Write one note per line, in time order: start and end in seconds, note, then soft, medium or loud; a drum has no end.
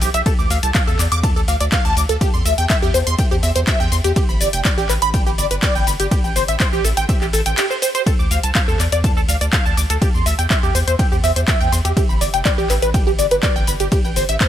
0.01 0.10 B1 loud
0.01 0.09 G4 medium
0.01 open hi-hat loud
0.01 shaker medium
0.14 0.22 B1 medium
0.14 0.21 E5 loud
0.14 closed hi-hat medium
0.14 shaker soft
0.26 0.34 A4 medium
0.26 kick loud
0.26 closed hi-hat medium
0.26 ride medium
0.26 shaker soft
0.38 0.47 D2 medium
0.38 0.49 D6 medium
0.38 shaker soft
0.50 0.59 D2 loud
0.50 0.58 F5 medium
0.50 open hi-hat loud
0.50 shaker medium
0.63 0.71 C2 medium
0.63 0.70 A5 medium
0.63 closed hi-hat medium
0.63 shaker soft
0.75 0.82 F5 loud
0.75 kick loud
0.75 clap loud
0.75 closed hi-hat soft
0.75 ride medium
0.75 shaker soft
0.87 0.95 E2 medium
0.87 0.98 A4 loud
0.87 shaker soft
0.99 1.08 E2 loud
0.99 1.04 D5 medium
0.99 clap soft
0.99 open hi-hat medium
0.99 shaker medium
1.12 1.38 E2 medium
1.12 1.19 D6 loud
1.12 closed hi-hat medium
1.12 shaker soft
1.23 1.31 A5 medium
1.23 kick loud
1.23 closed hi-hat soft
1.23 ride medium
1.23 shaker soft
1.36 1.44 D2 medium
1.36 1.41 A4 loud
1.36 shaker soft
1.48 1.57 D2 loud
1.48 1.56 F5 medium
1.48 open hi-hat loud
1.48 shaker medium
1.60 1.69 D2 medium
1.60 1.65 D5 medium
1.60 closed hi-hat medium
1.60 shaker soft
1.72 1.84 F5 loud
1.72 kick loud
1.72 clap loud
1.72 closed hi-hat soft
1.72 ride medium
1.72 shaker soft
1.85 1.93 D2 medium
1.85 1.96 A5 loud
1.85 shaker soft
1.97 2.05 D2 loud
1.97 2.01 D6 medium
1.97 open hi-hat medium
1.97 shaker medium
2.09 2.17 D2 medium
2.09 2.16 A4 medium
2.09 closed hi-hat medium
2.09 shaker soft
2.21 2.29 G4 medium
2.21 kick loud
2.21 closed hi-hat medium
2.21 ride medium
2.21 shaker soft
2.34 2.42 E2 medium
2.34 2.44 C6 medium
2.34 shaker soft
2.46 2.54 D2 loud
2.46 2.53 E5 medium
2.46 open hi-hat loud
2.46 shaker medium
2.58 2.66 E2 medium
2.58 2.65 G5 medium
2.58 closed hi-hat medium
2.58 shaker soft
2.70 2.77 E5 loud
2.70 kick loud
2.70 clap loud
2.70 closed hi-hat medium
2.70 ride medium
2.70 shaker soft
2.82 2.91 E2 medium
2.82 2.93 G4 loud
2.82 shaker soft
2.94 3.03 E2 loud
2.94 2.99 C5 medium
2.94 open hi-hat medium
2.94 shaker medium
3.07 3.15 E2 medium
3.07 3.14 C6 loud
3.07 closed hi-hat medium
3.07 shaker soft
3.19 3.26 G5 medium
3.19 kick loud
3.19 closed hi-hat medium
3.19 ride medium
3.19 shaker soft
3.31 3.39 E2 medium
3.31 3.36 G4 loud
3.31 shaker soft
3.43 3.52 E2 loud
3.43 3.51 E5 medium
3.43 open hi-hat loud
3.43 shaker medium
3.56 3.64 E2 medium
3.56 3.60 C5 medium
3.56 closed hi-hat medium
3.56 shaker soft
3.67 3.79 E5 loud
3.67 kick loud
3.67 clap loud
3.67 closed hi-hat medium
3.67 ride medium
3.67 shaker soft
3.80 3.88 E2 medium
3.80 3.91 G5 loud
3.80 shaker soft
3.92 4.01 E2 loud
3.92 3.96 C6 medium
3.92 open hi-hat medium
3.92 shaker medium
4.04 4.13 E2 medium
4.04 4.12 G4 medium
4.04 closed hi-hat medium
4.04 shaker soft
4.16 4.24 G4 medium
4.16 kick loud
4.16 closed hi-hat medium
4.16 ride medium
4.16 shaker soft
4.29 4.37 G1 medium
4.29 4.40 B5 medium
4.29 shaker soft
4.41 4.49 G1 loud
4.41 4.48 D5 medium
4.41 open hi-hat loud
4.41 shaker medium
4.53 4.61 F1 medium
4.53 4.60 G5 medium
4.53 closed hi-hat medium
4.53 shaker soft
4.65 4.73 D5 loud
4.65 kick loud
4.65 clap loud
4.65 closed hi-hat medium
4.65 ride medium
4.65 shaker soft
4.78 4.86 A1 medium
4.78 4.88 G4 loud
4.78 shaker soft
4.89 4.98 A1 loud
4.89 4.94 B4 medium
4.89 clap soft
4.89 open hi-hat medium
4.89 shaker medium
5.02 5.28 A1 medium
5.02 5.09 B5 loud
5.02 closed hi-hat medium
5.02 shaker soft
5.14 5.22 G5 medium
5.14 kick loud
5.14 closed hi-hat medium
5.14 ride medium
5.14 shaker soft
5.27 5.35 G1 medium
5.27 5.31 G4 loud
5.27 shaker soft
5.38 5.47 G1 loud
5.38 5.46 D5 medium
5.38 open hi-hat loud
5.38 shaker medium
5.51 5.59 G1 medium
5.51 5.55 B4 medium
5.51 closed hi-hat medium
5.51 shaker soft
5.62 5.74 D5 loud
5.62 kick loud
5.62 clap loud
5.62 closed hi-hat medium
5.62 ride medium
5.62 shaker soft
5.75 5.83 G1 medium
5.75 5.86 G5 loud
5.75 shaker soft
5.87 5.96 G1 loud
5.87 5.92 B5 medium
5.87 open hi-hat medium
5.87 shaker medium
6.00 6.08 G1 medium
6.00 6.07 G4 medium
6.00 closed hi-hat medium
6.00 shaker soft
6.11 6.19 G4 medium
6.11 kick loud
6.11 closed hi-hat medium
6.11 ride medium
6.11 shaker soft
6.24 6.32 A1 medium
6.24 6.35 G5 medium
6.24 shaker soft
6.36 6.44 G1 loud
6.36 6.43 C5 medium
6.36 open hi-hat loud
6.36 shaker medium
6.48 6.56 A1 medium
6.48 6.56 E5 medium
6.48 closed hi-hat medium
6.48 shaker soft
6.60 6.68 C5 loud
6.60 kick loud
6.60 clap loud
6.60 closed hi-hat medium
6.60 ride medium
6.60 shaker soft
6.73 6.81 A1 medium
6.73 6.84 G4 loud
6.73 shaker soft
6.84 6.93 A1 loud
6.84 6.89 A4 medium
6.84 open hi-hat medium
6.84 shaker medium
6.97 7.05 A1 medium
6.97 7.04 G5 loud
6.97 closed hi-hat medium
6.97 shaker soft
7.09 7.17 E5 medium
7.09 kick loud
7.09 closed hi-hat medium
7.09 ride medium
7.09 shaker soft
7.21 7.30 A1 medium
7.21 7.26 G4 loud
7.21 clap soft
7.21 shaker soft
7.33 7.42 A1 loud
7.33 7.41 A4 medium
7.33 open hi-hat loud
7.33 shaker medium
7.46 7.54 A1 medium
7.46 7.57 G5 medium
7.46 closed hi-hat medium
7.46 shaker soft
7.58 7.65 G4 medium
7.58 clap loud
7.58 closed hi-hat medium
7.58 ride medium
7.58 shaker soft
7.70 7.78 C5 medium
7.70 shaker soft
7.82 7.90 C5 medium
7.82 open hi-hat medium
7.82 shaker medium
7.95 8.02 C5 loud
7.95 closed hi-hat medium
7.95 shaker soft
8.06 8.14 A4 medium
8.06 kick loud
8.06 closed hi-hat medium
8.06 ride medium
8.06 shaker soft
8.19 8.27 D2 medium
8.19 8.30 D6 medium
8.19 shaker soft
8.31 8.39 D2 loud
8.31 8.39 F5 medium
8.31 open hi-hat loud
8.31 shaker medium
8.43 8.52 C2 medium
8.43 8.51 A5 medium
8.43 closed hi-hat medium
8.43 shaker soft
8.55 8.63 F5 loud
8.55 kick loud
8.55 clap loud
8.55 closed hi-hat medium
8.55 ride medium
8.55 shaker soft
8.68 8.76 E2 medium
8.68 8.79 A4 loud
8.68 shaker soft
8.80 8.88 E2 loud
8.80 8.84 D5 medium
8.80 clap soft
8.80 open hi-hat loud
8.80 shaker medium
8.92 9.18 E2 medium
8.92 9.00 D5 medium
8.92 closed hi-hat medium
8.92 shaker soft
9.04 9.12 A5 medium
9.04 kick loud
9.04 closed hi-hat medium
9.04 ride medium
9.04 shaker soft
9.16 9.25 D2 medium
9.16 9.21 A4 loud
9.16 shaker soft
9.28 9.37 D2 loud
9.28 9.36 F5 medium
9.28 open hi-hat loud
9.28 shaker medium
9.41 9.49 D2 medium
9.41 9.45 D5 medium
9.41 closed hi-hat medium
9.41 shaker soft
9.53 9.64 F5 loud
9.53 kick loud
9.53 clap loud
9.53 closed hi-hat medium
9.53 ride medium
9.53 shaker soft
9.65 9.74 D2 medium
9.65 9.76 A5 loud
9.65 shaker soft
9.77 9.86 D2 loud
9.77 9.82 D6 medium
9.77 open hi-hat medium
9.77 shaker medium
9.90 9.98 D2 medium
9.90 9.97 A4 medium
9.90 closed hi-hat medium
9.90 shaker soft
10.02 10.09 G4 medium
10.02 kick loud
10.02 closed hi-hat medium
10.02 ride medium
10.02 shaker soft
10.14 10.22 E2 medium
10.14 10.25 C6 medium
10.14 shaker soft
10.26 10.35 D2 loud
10.26 10.34 E5 medium
10.26 open hi-hat loud
10.26 shaker medium
10.39 10.47 E2 medium
10.39 10.46 G5 medium
10.39 closed hi-hat medium
10.39 shaker soft
10.50 10.58 E5 loud
10.50 kick loud
10.50 clap loud
10.50 closed hi-hat medium
10.50 ride medium
10.50 shaker soft
10.63 10.71 E2 medium
10.63 10.74 G4 loud
10.63 shaker soft
10.75 10.83 E2 loud
10.75 10.79 C5 medium
10.75 open hi-hat loud
10.75 shaker medium
10.87 10.96 E2 medium
10.87 10.95 C5 medium
10.87 closed hi-hat medium
10.87 shaker soft
10.99 11.07 G5 medium
10.99 kick loud
10.99 closed hi-hat medium
10.99 ride medium
10.99 shaker soft
11.12 11.20 E2 medium
11.12 11.16 G4 loud
11.12 shaker soft
11.24 11.32 E2 loud
11.24 11.31 E5 medium
11.24 open hi-hat loud
11.24 shaker medium
11.36 11.44 E2 medium
11.36 11.40 C5 medium
11.36 closed hi-hat medium
11.36 shaker soft
11.48 11.59 E5 loud
11.48 kick loud
11.48 clap loud
11.48 closed hi-hat medium
11.48 ride medium
11.48 shaker soft
11.61 11.69 E2 medium
11.61 11.71 G5 loud
11.61 shaker soft
11.72 11.81 E2 loud
11.72 11.77 C6 medium
11.72 open hi-hat loud
11.72 shaker medium
11.85 11.93 E2 medium
11.85 11.92 G4 medium
11.85 closed hi-hat medium
11.85 shaker soft
11.97 12.04 G4 medium
11.97 kick loud
11.97 closed hi-hat medium
11.97 ride medium
11.97 shaker soft
12.09 12.17 G1 medium
12.09 12.20 B5 medium
12.09 shaker soft
12.21 12.30 G1 loud
12.21 12.29 D5 medium
12.21 open hi-hat loud
12.21 shaker medium
12.34 12.42 F1 medium
12.34 12.41 G5 medium
12.34 closed hi-hat medium
12.34 shaker soft
12.45 12.53 D5 loud
12.45 kick loud
12.45 clap loud
12.45 closed hi-hat medium
12.45 ride medium
12.45 shaker soft
12.58 12.66 A1 medium
12.58 12.69 G4 loud
12.58 shaker soft
12.70 12.79 A1 loud
12.70 12.74 B4 medium
12.70 clap soft
12.70 open hi-hat loud
12.70 shaker medium
12.82 13.08 A1 medium
12.82 12.90 B4 medium
12.82 closed hi-hat medium
12.82 shaker soft
12.94 13.02 G5 medium
12.94 kick loud
12.94 closed hi-hat medium
12.94 ride medium
12.94 shaker soft
13.07 13.15 G1 medium
13.07 13.11 G4 loud
13.07 shaker soft
13.18 13.27 G1 loud
13.18 13.26 D5 medium
13.18 open hi-hat loud
13.18 shaker medium
13.31 13.39 G1 medium
13.31 13.36 B4 medium
13.31 closed hi-hat medium
13.31 shaker soft
13.43 13.55 D5 loud
13.43 kick loud
13.43 clap loud
13.43 closed hi-hat medium
13.43 ride medium
13.43 shaker soft
13.56 13.64 G1 medium
13.56 13.66 G5 loud
13.56 shaker soft
13.67 13.76 G1 loud
13.67 13.72 B5 medium
13.67 open hi-hat loud
13.67 shaker medium
13.80 13.88 G1 medium
13.80 13.87 G4 medium
13.80 closed hi-hat medium
13.80 shaker soft
13.92 14.00 G4 medium
13.92 kick loud
13.92 closed hi-hat medium
13.92 ride medium
13.92 shaker soft
14.04 14.13 A1 medium
14.04 14.15 G5 medium
14.04 shaker soft
14.16 14.25 G1 loud
14.16 14.24 C5 medium
14.16 open hi-hat loud
14.16 shaker medium
14.29 14.37 A1 medium
14.29 14.36 E5 medium
14.29 closed hi-hat medium
14.29 shaker soft
14.41 14.48 C5 loud
14.41 kick loud
14.41 clap loud
14.41 closed hi-hat medium
14.41 ride medium
14.41 shaker soft